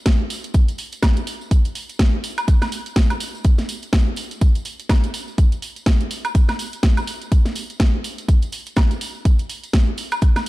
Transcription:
0.06 kick, snare, closed hi-hat, tambourine
0.30 open hi-hat, tambourine
0.44 closed hi-hat, tambourine
0.54 kick, closed hi-hat, tambourine
0.68 closed hi-hat, tambourine
0.78 open hi-hat, tambourine
0.92 closed hi-hat, tambourine
1.02 kick, snare, closed hi-hat, tambourine, high woodblock
1.16 closed hi-hat, tambourine
1.27 open hi-hat, tambourine
1.41 tambourine
1.51 kick, closed hi-hat, tambourine
1.65 closed hi-hat, tambourine
1.75 open hi-hat, tambourine
1.89 closed hi-hat, tambourine
1.99 kick, snare, closed hi-hat, tambourine
2.24 open hi-hat, tambourine
2.38 closed hi-hat, tambourine, high woodblock
2.48 kick, closed hi-hat, tambourine
2.62 snare, closed hi-hat, tambourine, high woodblock
2.72 open hi-hat, tambourine
2.86 closed hi-hat, tambourine
2.96 kick, snare, closed hi-hat, tambourine
3.10 closed hi-hat, tambourine, high woodblock
3.20 open hi-hat, tambourine
3.35 tambourine
3.44 kick, closed hi-hat, tambourine
3.58 snare, closed hi-hat, tambourine
3.69 open hi-hat, tambourine
3.82 closed hi-hat, tambourine
3.93 kick, snare, closed hi-hat, tambourine
4.16 open hi-hat, tambourine
4.31 closed hi-hat, tambourine
4.41 kick, closed hi-hat, tambourine
4.55 closed hi-hat, tambourine
4.65 open hi-hat, tambourine
4.80 closed hi-hat, tambourine
4.89 kick, snare, closed hi-hat, tambourine, high woodblock
5.04 closed hi-hat, tambourine
5.14 open hi-hat, tambourine
5.28 tambourine
5.38 kick, closed hi-hat, tambourine
5.52 closed hi-hat, tambourine
5.62 open hi-hat, tambourine
5.76 closed hi-hat, tambourine
5.86 kick, snare, closed hi-hat, tambourine
6.01 closed hi-hat
6.11 open hi-hat, tambourine
6.25 closed hi-hat, tambourine, high woodblock
6.35 kick, closed hi-hat, tambourine
6.49 snare, closed hi-hat, tambourine, high woodblock
6.59 open hi-hat, tambourine
6.73 closed hi-hat, tambourine
6.83 kick, snare, closed hi-hat, tambourine
6.97 closed hi-hat, tambourine, high woodblock
7.07 open hi-hat, tambourine
7.22 closed hi-hat, tambourine
7.32 kick, closed hi-hat, tambourine
7.45 snare, closed hi-hat, tambourine
7.55 open hi-hat, tambourine
7.70 closed hi-hat, tambourine
7.80 kick, snare, closed hi-hat, tambourine
8.04 open hi-hat, tambourine
8.18 closed hi-hat, tambourine
8.28 kick, closed hi-hat, tambourine
8.42 closed hi-hat, tambourine
8.52 open hi-hat, tambourine
8.66 closed hi-hat, tambourine
8.76 kick, snare, closed hi-hat, tambourine, high woodblock
8.91 closed hi-hat, tambourine
9.01 open hi-hat, tambourine
9.15 tambourine
9.25 kick, closed hi-hat, tambourine
9.39 closed hi-hat, tambourine
9.49 open hi-hat, tambourine
9.64 closed hi-hat, tambourine
9.73 kick, snare, closed hi-hat, tambourine
9.98 open hi-hat, tambourine
10.11 closed hi-hat, tambourine, high woodblock
10.21 kick, closed hi-hat, tambourine
10.36 snare, closed hi-hat, tambourine, high woodblock

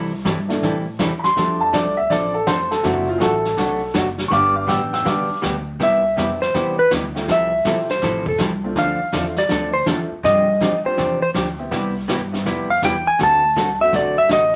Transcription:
Already playing: C2 C3 E3 G3 C4 E4 A4
0.25 G2 C3 E3 G3 C4 E4 A4, kick, snare, hi-hat pedal
0.48 E3 A3 D4, snare
0.62 A2 C3 E3 G3 C4 E4 A4, brush sweep, kick, snare
0.99 E2 C3 E3 G3 C4 E4 A4, kick, snare, hi-hat pedal
1.19 B5
1.24 C6, snare
1.36 F2 F3 G3 A3 C4 D4 A4, brush sweep, kick, snare
1.60 A5
1.73 C2 F3 C4 D4 A4 D5, kick, snare, hi-hat pedal
1.97 E5
2.10 A1 F3 C4 D4 A4 D5, brush sweep, kick, snare
2.34 A4
2.47 F1 F3 C4 D4 A4 C5, kick, snare, hi-hat pedal
2.71 A4, snare
2.83 F#1 C3 F#3 A3 C4 D4 E4 F#4, brush sweep, kick, snare
3.09 F4
3.18 A1 C3 F#3 A3 D4 F#4 G#4, kick, snare, hi-hat pedal
3.22 A4
3.45 snare
3.57 B1 C3 F#3 A3 D4 F#4, brush sweep, kick, snare
3.94 F#1 C3 F#3 A3 D4 F#4, kick, snare, hi-hat pedal
4.18 snare
4.28 G1 D3 G3 B3 D4 G4 F5 C#6, brush sweep, kick, snare
4.32 B3 D4 D6
4.55 F5 D6
4.67 A1 D3 G3 B3 D4 G4 G5 E6, kick, snare, hi-hat pedal
4.93 G5 E6, snare
5.05 B1 D3 G3 B3 D4 G4 F5 D6, brush sweep, kick, snare
5.29 muted upright bass stroke
5.42 D2 D3 G3 B3 D4 G4, kick, snare, hi-hat pedal
5.80 C2 C3 G3 B3 E4 G4 E5, brush sweep, kick, snare
6.16 F2 C3 G3 B3 C4 D4 E4 G4, kick, snare, hi-hat pedal
6.42 C5, snare
6.54 E2 C3 G3 B3 E4 G4, brush sweep, kick, snare
6.79 B4
6.91 D2 C3 G3 B3 E4 G4, kick, snare, hi-hat pedal
7.15 A3 C4 E4 F4 G4, snare
7.28 C2 C3 F3 C4 E4 A4 E5, brush sweep, kick, snare
7.65 B1 C3 F3 A3 C4 E4 F4 G4 A4, kick, snare, hi-hat pedal
7.89 C5, snare
8.02 A1 C3 F3 C4 E4 A4, brush sweep, kick, snare
8.26 A4, kick
8.38 C2 C3 F3 C4 E4 A4, kick, snare, hi-hat pedal
8.64 A3 C4 D4 E4 F4
8.76 D2 D3 F3 C4 D4 A4 F5, brush sweep, kick, snare
9.01 muted upright bass stroke
9.13 E2 D3 F3 A3 C4 D4 E4 F4 A4, kick, snare, hi-hat pedal
9.36 D5, snare
9.49 D2 D3 F3 C4 D4 A4, brush sweep, kick, snare
9.74 C5
9.86 E2 D3 F3 A3 C4 D4 E4 F4 A4, kick, snare, hi-hat pedal
10.11 muted upright bass stroke
10.23 G2 C3 F3 C4 D4 G4 D#5, brush sweep, kick, snare
10.61 C2 C3 F3 C4 D4 G4, kick, snare, hi-hat pedal
10.84 G3 C4 D4 F4 G4 C5, muted upright bass stroke
10.97 E2 C3 F3 C4 D4 G4, brush sweep, kick, snare
11.22 C5
11.34 D2 C3 F3 C4 D4 G4, kick, snare, hi-hat pedal
11.59 G3 B3 C4 E4 G4
11.71 C2 C3 G3 B3 E4 G4, brush sweep, kick, snare
12.08 G2 C3 G3 B3 E4 G4, kick, snare, hi-hat pedal
12.31 G3 B3 C4 E4 G4, snare
12.45 F2 C3 G3 B3 E4 G4, brush sweep, kick, snare
12.70 F5
12.82 E2 C3 G3 B3 E4 G4 G5, kick, snare, hi-hat pedal
13.07 G#5
13.19 D2 D3 A3 C4 F#4 A4, brush sweep, kick, snare
13.23 A5
13.56 C2 D3 A3 C4 F#4 A4, kick, snare, hi-hat pedal
13.80 F#3 A3 C4 D4 F#4 E5
13.93 B1 D3 A3 C4 F#4 A4 D5, brush sweep, kick, snare
14.18 E5
14.29 A1 D3 A3 C4 F#4 A4 D#5, kick, snare, hi-hat pedal

